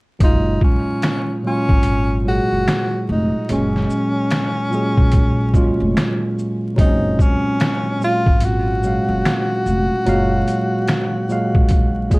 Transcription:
0.19 F#1 A#2 F#3 G#3, kick, closed hi-hat
0.24 D#4 F4
0.61 C#4, kick
1.02 finger snap, snare, closed hi-hat
1.42 A#2 F#3 G#3
1.47 C#4 F4
1.69 G#1, kick
1.83 closed hi-hat
2.24 A#2 F#3 G#3
2.28 F#4 G#4
2.51 F#1
2.68 finger snap, snare, closed hi-hat
3.09 F1 D#4
3.48 F#1 A#2 F#3 G#3, closed hi-hat
3.52 C#4
3.76 snare
3.90 shaker
4.31 finger snap, snare, closed hi-hat
4.70 A#2 F#3 G#3, shaker
4.74 G#4
4.97 A#1, kick
5.12 kick, closed hi-hat
5.53 A#2 F#3 G#3, kick, shaker
5.57 F4
5.80 F1
5.97 finger snap, snare, closed hi-hat
6.39 shaker
6.75 F#1 A#2 F#3 G#3, kick, closed hi-hat
6.79 C4 D#4
6.86 C#4
7.19 C#4, kick, shaker
7.60 finger snap, snare, closed hi-hat
7.99 A#2 F#3 G#3, shaker
8.04 F4
8.26 G#1, kick
8.40 F#4, closed hi-hat
8.82 A#2 F#3 G#3, shaker
8.87 F5
9.09 F#1
9.25 finger snap, snare, closed hi-hat
9.66 F1, shaker
10.05 F#1 A#2 F#3 G#3, closed hi-hat
10.09 F5
10.48 closed hi-hat, shaker
10.88 finger snap, snare, closed hi-hat
11.28 A#2 F#3 G#3, shaker
11.32 F5
11.55 A#1, kick
11.69 kick, closed hi-hat
12.10 A#2 F#3 G#3, kick, closed hi-hat, shaker
12.14 G#4

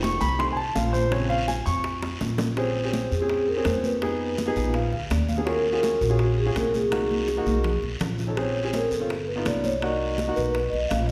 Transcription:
Already playing: F1 D#3 A3 C4
0.03 C#6, high bongo, high conga, short guiro
0.21 C2 B5, high bongo, high conga, short guiro
0.39 D#3 A3 C4 C6, high bongo, high conga, long guiro
0.52 G#5
0.57 A5, high bongo, high conga
0.75 A#1 F5, high bongo, low bongo, high conga, short guiro
0.93 C5, high conga, short guiro
1.10 C#3 G#3 C4 C#5, high bongo, high conga, long guiro
1.29 F5, high bongo, high conga
1.48 G#5, high bongo, high conga, short guiro
1.66 F2 C#6, high bongo, high conga, short guiro
1.84 high bongo, high conga, long guiro
2.02 high bongo, high conga
2.21 A#1, low bongo, high conga, short guiro
2.38 low bongo, high conga, short guiro
2.57 C4 C#4 G#4 C5, high bongo, high conga, long guiro
2.75 high conga
2.84 C4 C#4 G#4
2.93 high bongo, high conga, short guiro
3.11 F2 G#4, high conga, short guiro
3.21 C4 C#4 G#4
3.29 G#4, high bongo, high conga, long guiro
3.48 A#4, high conga
3.56 C4 C#4 G#4
3.65 F2 C5, high bongo, low bongo, high conga, short guiro
3.84 B4, high conga, short guiro
4.02 B3 D#4 G#4, high bongo, high conga, long guiro
4.21 high conga
4.38 high bongo, high conga, short guiro
4.46 B3 D#4 G#4
4.56 A#1 G#5, high bongo, high conga, short guiro
4.74 F5, high bongo, high conga, long guiro
4.92 D2 F5, high bongo, high conga
5.10 D#2 D5, high bongo, low bongo, high conga, short guiro
5.29 F5, high bongo, high conga, short guiro
5.37 B3 D4 G#4
5.45 C#4 F4 F#4 G#4 A#4, high bongo, high conga, long guiro
5.66 high conga
5.72 C#4 F4 F#4 G#4
5.83 high bongo, high conga, short guiro
6.01 A#1 F#4, high conga, short guiro
6.09 C#4 F4 F#4 G#4
6.19 F#4, high bongo, high conga, long guiro
6.38 G#4, high conga
6.46 C#4 F4 F#4 G#4
6.55 C2 A#4, high bongo, low bongo, high conga, short guiro
6.74 G#4, high conga, short guiro
6.91 A#3 D#4 F#4, high bongo, high conga, long guiro
7.11 high conga
7.28 high bongo, short guiro
7.37 A#3 D#4 F#4
7.46 B1, high bongo, high conga, short guiro
7.64 high bongo, low conga, long guiro
7.83 B1, high bongo
8.00 A#1, high bongo, low bongo, low conga, short guiro
8.18 high bongo, low conga, short guiro
8.27 C#4 D#4 A4
8.36 C4 C#4 G#4 C#5, high bongo, high conga, long guiro
8.56 high conga
8.63 C4 C#4 G#4
8.73 A#4, high bongo, high conga, short guiro
8.90 G1 A4, high conga, short guiro
9.00 C4 C#4 F4
9.09 high bongo, high conga, long guiro
9.27 B4, high conga
9.36 B3 D#4 F4
9.45 C2 D5, high bongo, low bongo, high conga, short guiro
9.64 C#5, high conga, short guiro
9.75 D5
9.81 A#3 D#4 F#4 D#5, high bongo, high conga, long guiro
10.00 high conga
10.18 high bongo, high conga, short guiro
10.27 A#3 D#4 F#4
10.35 B1 B4, high bongo, high conga, short guiro
10.54 high bongo, high conga, long guiro
10.70 B1 D#5, high bongo, high conga
10.89 A#1 F5, high bongo, low bongo, high conga, short guiro
11.06 D#5

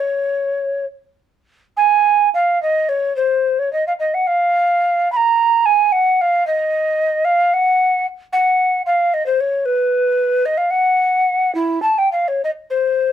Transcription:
Already playing: C#5
1.77 G#5
2.34 F5
2.62 D#5
2.89 C#5
3.16 C5
3.59 C#5
3.73 D#5
3.87 F5
4.00 D#5
4.14 F#5
4.27 F5
5.12 B5
5.17 A#5
5.66 G#5
5.92 F#5
6.21 F5
6.47 D#5
7.25 F5
7.54 F#5
8.33 F#5
8.86 F5
9.14 D#5
9.26 C5
9.40 C#5
9.65 B4
10.46 D#5
10.58 F5
10.71 F#5
11.55 E4
11.82 A5
11.98 G5
12.12 F5
12.28 C#5
12.44 D#5
12.70 C5

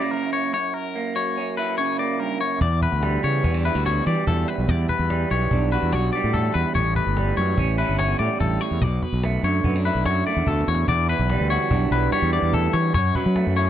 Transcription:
Already playing: F#2 C#3 F#3 C#4 E4 D5
0.02 A#3
0.11 F#2 A#4
0.33 C#5
0.53 F#2 C#5
0.74 A#4
0.95 A#3
1.15 F#3 C#5
1.37 C#4
1.57 E4 B4
1.78 C#3 C#5
1.99 A#3 D5
2.19 G2 A#4
2.40 F#2 C#5
2.61 E2 D5, cajon bass
2.82 B4, cajon bass
2.92 D2
3.03 G3, cajon slap
3.24 C#3 E3 C#5
3.44 E2 B3, cajon bass
3.54 D4
3.65 E4 B4, cajon slap
3.75 D2 F#4
3.86 B2 C#5, cajon slap
4.06 E3 G3 D5, cajon slap
4.27 E2 A4, cajon bass
4.48 B4, cajon slap
4.58 B1
4.69 E2 D5, cajon bass
4.89 B4, cajon bass
4.99 E2
5.10 G3, cajon slap
5.30 B1 E3 C#5, cajon slap
5.51 B1 D4, cajon bass
5.72 F#4 B4, cajon slap
5.82 E2
5.92 B1 B2 C#5, cajon slap
6.13 G3 D5, cajon slap
6.24 A2
6.34 E2 A4, cajon bass
6.54 E2 B4
6.75 A1 A2 C#5, cajon bass
6.96 B4, cajon bass, cajon slap
7.07 G1
7.17 G3, cajon slap
7.37 F#2 E3 C#5, cajon slap
7.58 A1 C#4, cajon bass
7.78 E4 B4, cajon slap
7.89 G1
7.99 E2 C#5, cajon slap
8.19 A2 G3 D5, cajon slap
8.40 A1 G2 A4, cajon bass
8.61 A2 C#5, cajon slap
8.71 E2
8.82 B1 B2 D5, cajon bass
9.02 B4, cajon bass, cajon slap
9.12 B1
9.23 A3, cajon slap
9.43 F#2 D3 C#5, cajon slap
9.64 F#2 B3, cajon bass
9.76 D4
9.85 E4 B4, cajon slap
9.95 B1
10.05 F#2 C#5, cajon slap
10.26 A3 D5, cajon slap
10.37 E2
10.47 D2 B2 A4, cajon bass, cajon slap
10.61 cajon slap
10.68 E2 C#5, cajon slap
10.75 cajon slap
10.88 E2 D5, cajon bass
11.09 E3 B4
11.19 B1
11.30 G3, cajon slap
11.40 D2
11.50 F#4 C#5, cajon slap
11.71 B1 D4, cajon bass
11.91 B1 E3 B4, cajon slap
12.12 G3 C#5, cajon slap
12.22 E2
12.33 E3 D5, cajon slap
12.42 E2
12.53 D2 A4, cajon bass
12.73 E2 E3 C#5, cajon slap
12.94 F#2 C#5, cajon bass
13.15 F#3 B4, cajon bass
13.26 F#3
13.36 A3, cajon slap
13.47 F#2
13.56 E4 C#5, cajon slap

